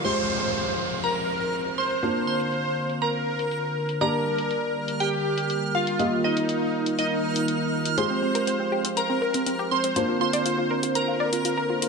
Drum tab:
CC |x---------------|----------------|----------------|----------------|
HH |x---x--xx--xx--x|x--xx--xx--xx--x|x--xx--xx--xx--x|x--xx--xx--xx--x|

CC |----------------|----------------|
HH |x--xx--xx--xx--x|x--xx--xx--xx--x|